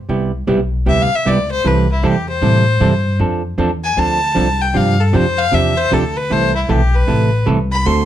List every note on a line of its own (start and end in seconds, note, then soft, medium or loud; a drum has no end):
0.09 0.47 C2 medium
0.09 0.30 C3 medium
0.09 0.31 G3 medium
0.09 0.31 B3 medium
0.09 0.31 E4 medium
0.09 0.31 G4 medium
0.47 0.85 B1 medium
0.47 0.59 C3 medium
0.47 0.59 G3 medium
0.47 0.59 B3 medium
0.47 0.59 E4 medium
0.47 0.59 G4 medium
0.86 1.10 D2 medium
0.86 1.08 C3 medium
0.86 1.08 G3 medium
0.86 1.08 B3 medium
0.86 1.08 E4 medium
0.86 1.08 G4 medium
0.86 1.03 E5 medium
1.02 1.17 F5 loud
1.12 1.29 E5 medium
1.12 muted upright bass stroke soft
1.25 1.63 C#2 medium
1.25 1.37 C3 medium
1.25 1.37 G3 medium
1.25 1.37 B3 medium
1.25 1.37 E4 medium
1.25 1.37 G4 medium
1.25 1.51 D5 medium
1.51 1.68 C5 medium
1.64 2.02 C2 medium
1.64 1.86 C3 medium
1.64 1.86 E3 medium
1.64 1.86 G3 medium
1.64 1.86 C4 medium
1.64 1.87 E4 medium
1.64 1.87 A4 medium
1.64 1.90 B4 medium
1.92 2.07 E4 medium
2.03 2.41 E2 medium
2.03 2.14 C3 medium
2.03 2.15 E3 medium
2.03 2.15 G3 medium
2.03 2.15 C4 medium
2.03 2.15 E4 medium
2.03 2.28 G4 medium
2.03 2.15 A4 medium
2.29 3.16 C5 loud
2.42 2.79 A2 medium
2.42 2.64 C3 medium
2.42 2.64 E3 medium
2.42 2.64 G3 medium
2.42 2.64 C4 medium
2.42 2.64 E4 medium
2.42 2.64 A4 medium
2.80 3.18 G2 medium
2.80 2.92 C3 medium
2.80 2.92 E3 medium
2.80 2.92 G3 medium
2.80 2.92 C4 medium
2.80 2.92 E4 medium
2.80 2.92 A4 medium
3.19 3.57 F2 medium
3.19 3.41 F3 medium
3.19 3.41 C4 medium
3.19 3.41 D4 medium
3.19 3.42 A4 medium
3.58 3.96 E2 medium
3.58 3.70 F3 medium
3.58 3.70 C4 medium
3.58 3.70 D4 medium
3.58 3.70 A4 medium
3.84 4.00 G#5 loud
3.97 4.35 D2 medium
3.97 4.19 F3 medium
3.97 4.19 C4 medium
3.97 4.19 D4 medium
3.97 4.19 A4 medium
3.97 4.63 A5 loud
4.35 4.74 C2 loud
4.35 4.47 F3 medium
4.35 4.47 C4 medium
4.35 4.47 D4 medium
4.35 4.47 A4 medium
4.61 4.78 G5 medium
4.74 5.13 G2 medium
4.74 4.96 C3 medium
4.74 4.96 F3 medium
4.74 4.96 C4 medium
4.74 4.96 D4 medium
4.74 4.96 G4 medium
4.74 5.02 F5 medium
5.00 5.16 A4 medium
5.13 5.52 F2 medium
5.13 5.25 C3 medium
5.13 5.25 F3 medium
5.13 5.25 C4 medium
5.13 5.25 D4 medium
5.13 5.25 G4 medium
5.13 5.40 C5 loud
5.38 5.56 F5 loud
5.51 5.90 E2 medium
5.51 5.74 C3 medium
5.51 5.74 F3 medium
5.51 5.74 C4 medium
5.51 5.74 D4 medium
5.51 5.74 G4 medium
5.51 5.79 E5 loud
5.77 5.95 C5 loud
5.91 6.29 D2 medium
5.91 6.02 C3 medium
5.91 6.03 F3 medium
5.91 6.03 C4 medium
5.91 6.03 D4 medium
5.91 6.03 G4 medium
5.91 6.18 A4 medium
6.16 6.33 B4 medium
6.30 6.68 C2 medium
6.30 6.52 C3 medium
6.30 6.52 E3 medium
6.30 6.52 A3 medium
6.30 6.52 E4 medium
6.30 6.52 A4 medium
6.30 6.55 C5 loud
6.56 6.72 E4 medium
6.69 7.07 B1 medium
6.69 6.80 C3 medium
6.69 6.80 E3 medium
6.69 6.80 A3 medium
6.69 6.81 E4 medium
6.69 6.96 G4 medium
6.69 6.80 A4 medium
6.95 7.47 B4 medium
7.07 7.45 A1 medium
7.07 7.29 C3 medium
7.07 7.29 E3 medium
7.07 7.29 A3 medium
7.07 7.29 E4 medium
7.07 7.30 A4 medium
7.46 7.84 C2 loud
7.46 7.58 C3 medium
7.46 7.58 E3 medium
7.46 7.58 A3 medium
7.46 7.58 E4 medium
7.46 7.58 A4 medium
7.72 7.87 B5 loud
7.86 8.05 D2 medium
7.86 8.05 D3 medium
7.86 8.05 A3 medium
7.86 8.05 C4 medium
7.86 8.05 F#4 medium
7.86 8.05 A4 medium
7.86 8.05 C6 loud